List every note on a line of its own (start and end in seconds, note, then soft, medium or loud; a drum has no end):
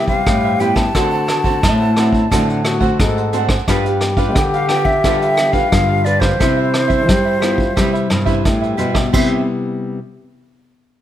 0.00 0.24 C3 medium
0.00 0.17 G3 medium
0.00 0.96 G4 medium
0.08 0.55 G3 medium
0.08 0.42 B4 medium
0.08 0.42 C5 medium
0.08 0.62 F5 medium
0.08 kick medium
0.08 closed hi-hat soft
0.26 0.92 G2 medium
0.26 0.84 A2 medium
0.26 kick medium
0.26 cross-stick medium
0.26 closed hi-hat medium
0.44 0.60 B4 soft
0.44 0.59 C5 soft
0.44 0.60 E5 medium
0.60 0.89 G3 medium
0.60 0.89 B3 medium
0.60 0.90 E4 medium
0.60 0.76 G4 medium
0.60 0.76 B4 medium
0.60 0.76 C5 medium
0.60 0.75 E5 medium
0.60 0.77 G5 medium
0.60 closed hi-hat soft
0.76 0.93 B4 soft
0.76 0.94 C5 soft
0.76 0.92 E5 soft
0.76 2.81 A5 medium
0.76 kick medium
0.76 cross-stick medium
0.76 closed hi-hat soft
0.95 1.63 D3 medium
0.95 1.60 D3 medium
0.95 1.27 A3 medium
0.95 1.27 C4 medium
0.95 1.11 D4 medium
0.95 1.63 F#4 medium
0.95 1.27 F#4 medium
0.95 1.11 A4 medium
0.95 1.11 C5 medium
0.95 1.11 F#5 medium
0.95 kick medium
0.95 cross-stick medium
0.95 closed hi-hat medium
1.12 1.27 A4 soft
1.12 1.27 C5 soft
1.12 1.28 F#5 soft
1.27 muted cavaquinho stroke soft
1.27 cross-stick medium
1.27 closed hi-hat soft
1.44 1.91 A3 medium
1.44 1.91 C4 medium
1.44 1.91 F#4 medium
1.44 1.79 A4 soft
1.44 1.78 C5 medium
1.44 1.78 F#5 medium
1.44 kick medium
1.44 closed hi-hat soft
1.63 2.28 A2 medium
1.63 2.21 A2 loud
1.63 2.34 E4 medium
1.63 kick medium
1.63 cross-stick medium
1.63 closed hi-hat medium
1.79 1.96 A4 soft
1.79 1.96 C5 soft
1.79 1.95 F#5 soft
1.96 2.26 A3 medium
1.96 2.26 C4 medium
1.96 2.29 D4 soft
1.96 2.26 F#4 medium
1.96 2.30 A4 soft
1.96 2.30 C5 medium
1.96 2.30 F#5 medium
1.96 cross-stick medium
1.96 closed hi-hat soft
2.12 kick medium
2.31 2.90 A2 medium
2.31 2.97 D3 medium
2.31 2.78 A3 medium
2.31 2.78 C4 medium
2.31 2.47 D4 medium
2.31 2.64 D4 medium
2.31 2.78 F#4 medium
2.31 2.47 A4 medium
2.31 2.47 C5 medium
2.31 2.47 F#5 medium
2.31 kick medium
2.31 cross-stick medium
2.31 closed hi-hat medium
2.49 2.64 A4 soft
2.49 2.64 C5 soft
2.49 2.64 F#5 soft
2.49 closed hi-hat soft
2.64 2.97 F#4 medium
2.64 muted cavaquinho stroke soft
2.64 cross-stick medium
2.64 closed hi-hat soft
2.80 3.28 A3 medium
2.80 3.28 C4 medium
2.80 3.28 F#4 medium
2.80 3.15 A4 medium
2.80 3.15 C5 medium
2.80 3.14 F#5 medium
2.80 kick medium
2.80 closed hi-hat soft
3.00 3.58 G#2 medium
3.00 3.39 A4 loud
3.00 kick medium
3.00 cross-stick medium
3.00 closed hi-hat medium
3.17 3.32 A4 soft
3.17 3.33 C5 soft
3.17 3.32 F#5 soft
3.17 closed hi-hat soft
3.33 3.53 A3 medium
3.33 3.54 C4 medium
3.33 3.49 D4 medium
3.33 3.54 F#4 medium
3.33 3.49 A4 medium
3.33 3.49 C5 medium
3.33 3.47 F#5 medium
3.33 closed hi-hat soft
3.48 3.66 A4 soft
3.48 3.66 C5 soft
3.48 3.65 F#5 soft
3.48 kick medium
3.48 cross-stick medium
3.68 4.36 G2 medium
3.68 4.33 G3 medium
3.68 3.83 D4 medium
3.68 4.14 D4 medium
3.68 4.14 F4 medium
3.68 3.84 G4 medium
3.68 5.73 G4 loud
3.68 3.84 B4 medium
3.68 4.14 B4 medium
3.68 3.84 F5 medium
3.68 kick medium
3.68 cross-stick medium
3.68 closed hi-hat medium
3.85 4.01 G4 soft
3.85 4.01 B4 soft
3.85 4.01 F5 soft
3.85 closed hi-hat soft
4.01 muted cavaquinho stroke soft
4.01 cross-stick medium
4.01 closed hi-hat soft
4.17 4.64 D4 medium
4.17 4.64 F4 medium
4.17 4.52 G4 soft
4.17 4.51 B4 medium
4.17 4.65 B4 medium
4.17 4.51 F5 medium
4.17 kick medium
4.17 closed hi-hat soft
4.35 4.94 D3 loud
4.35 5.01 D3 medium
4.35 4.42 G5 medium
4.35 kick medium
4.35 cross-stick medium
4.35 closed hi-hat medium
4.54 4.68 G4 soft
4.54 4.69 B4 soft
4.54 4.69 F5 medium
4.54 4.69 F5 soft
4.54 closed hi-hat soft
4.69 5.02 D4 soft
4.69 4.90 D4 medium
4.69 4.90 F4 medium
4.69 5.03 G4 soft
4.69 5.03 B4 soft
4.69 4.90 B4 medium
4.69 5.03 F5 medium
4.69 4.86 G5 loud
4.69 cross-stick medium
4.69 closed hi-hat soft
4.85 5.20 E5 medium
4.85 kick medium
4.85 closed hi-hat soft
5.04 5.62 D3 medium
5.04 5.69 G3 medium
5.04 5.20 D4 medium
5.04 5.50 D4 medium
5.04 5.51 F4 medium
5.04 5.20 G4 medium
5.04 5.51 B4 medium
5.04 5.21 B4 medium
5.04 5.20 F5 medium
5.04 kick medium
5.04 cross-stick medium
5.04 closed hi-hat medium
5.21 5.37 G4 soft
5.21 5.37 B4 soft
5.21 5.54 E5 medium
5.21 5.37 F5 soft
5.21 closed hi-hat soft
5.37 muted cavaquinho stroke soft
5.37 cross-stick medium
5.37 closed hi-hat medium
5.52 6.00 D4 medium
5.52 6.00 F4 medium
5.52 5.88 G4 medium
5.52 5.87 B4 medium
5.52 6.00 B4 medium
5.52 5.87 F5 medium
5.52 6.06 F5 medium
5.52 kick medium
5.52 closed hi-hat soft
5.72 6.30 G2 medium
5.72 6.37 D3 medium
5.72 6.40 F4 medium
5.72 kick medium
5.72 cross-stick medium
5.72 closed hi-hat medium
5.89 6.04 G4 soft
5.89 6.05 B4 soft
5.89 6.05 F5 soft
6.04 6.21 D4 medium
6.04 6.35 D4 medium
6.04 6.35 F4 medium
6.04 6.21 G4 medium
6.04 6.20 B4 medium
6.04 6.35 B4 medium
6.04 6.22 D5 medium
6.04 6.19 F5 medium
6.04 closed hi-hat soft
6.20 6.38 G4 soft
6.20 6.38 B4 soft
6.20 8.44 C5 medium
6.20 6.38 F5 soft
6.20 kick medium
6.20 cross-stick medium
6.20 closed hi-hat soft
6.39 7.09 C3 medium
6.39 7.06 C3 medium
6.39 6.73 G3 soft
6.39 7.10 E4 medium
6.39 6.73 E4 medium
6.39 6.56 G4 medium
6.39 6.57 B4 medium
6.39 6.56 C5 medium
6.39 6.55 E5 medium
6.39 kick medium
6.39 cross-stick medium
6.39 closed hi-hat medium
6.57 6.72 B4 soft
6.57 6.72 C5 soft
6.57 6.73 E5 soft
6.73 muted cavaquinho stroke soft
6.73 cross-stick medium
6.73 closed hi-hat soft
6.88 7.37 G3 medium
6.88 7.37 E4 medium
6.88 7.24 C5 medium
6.88 7.23 E5 medium
6.88 kick medium
6.88 closed hi-hat soft
7.08 7.74 G2 medium
7.08 7.67 G3 medium
7.08 7.43 G4 medium
7.08 kick medium
7.08 cross-stick medium
7.08 closed hi-hat medium
7.25 7.42 B4 soft
7.25 7.40 C5 soft
7.25 7.41 E5 soft
7.40 7.62 G3 medium
7.40 7.62 B3 soft
7.40 7.63 E4 medium
7.40 7.79 F4 medium
7.40 7.75 G4 soft
7.40 7.75 C5 soft
7.40 7.76 E5 medium
7.40 cross-stick medium
7.40 closed hi-hat soft
7.58 kick medium
7.76 8.42 C3 medium
7.76 8.06 G3 medium
7.76 8.09 G3 soft
7.76 8.19 E4 medium
7.76 8.10 E4 medium
7.76 7.92 G4 medium
7.76 7.93 B4 medium
7.76 7.92 C5 medium
7.76 7.92 E5 medium
7.76 kick medium
7.76 cross-stick medium
7.76 closed hi-hat medium
7.93 8.09 B4 soft
7.93 8.09 C5 soft
7.93 8.09 E5 medium
7.93 closed hi-hat soft
8.10 8.41 G2 medium
8.10 muted cavaquinho stroke soft
8.10 cross-stick medium
8.10 closed hi-hat soft
8.25 8.73 G3 medium
8.25 8.74 E4 medium
8.25 8.60 B4 medium
8.25 8.61 C5 medium
8.25 8.60 E5 medium
8.25 kick medium
8.25 closed hi-hat soft
8.45 9.11 G2 medium
8.45 8.76 A2 medium
8.45 9.10 G4 medium
8.45 kick medium
8.45 cross-stick medium
8.45 closed hi-hat medium
8.61 8.78 B4 soft
8.61 8.77 C5 soft
8.61 8.78 E5 soft
8.61 closed hi-hat soft
8.77 9.09 B2 medium
8.77 8.99 G3 medium
8.77 8.99 B3 soft
8.77 9.00 E4 medium
8.77 8.94 G4 medium
8.77 8.94 B4 medium
8.77 8.95 C5 medium
8.77 8.92 E5 medium
8.77 closed hi-hat soft
8.94 9.12 B4 soft
8.94 9.12 C5 soft
8.94 9.11 E5 soft
8.94 kick medium
8.94 cross-stick medium
9.12 9.45 C3 medium
9.12 9.99 C3 medium
9.12 9.99 G3 medium
9.12 9.99 B3 medium
9.12 9.99 E4 medium
9.12 9.40 G4 medium
9.12 9.46 G4 medium
9.12 9.41 B4 medium
9.12 9.41 C5 medium
9.12 9.41 E5 medium
9.12 kick medium
9.12 crash medium